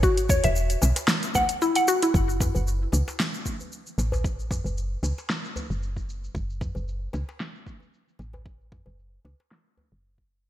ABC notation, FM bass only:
X:1
M:4/4
L:1/16
Q:"Swing 16ths" 1/4=114
K:F#m
V:1 name="FM bass" clef=bass
G,,,2 E,, E,,,2 z B,,, z8 z | F,,,2 F,, F,,,2 z C,, z6 z A,,,2- | A,,,2 F,, F,,,2 z C,, z4 F,,,4 z | F,,,2 F,, F,,,2 z C,, z6 z A,,,2- |
A,,,2 F,, F,,,2 z C,, z4 F,,,4 z |]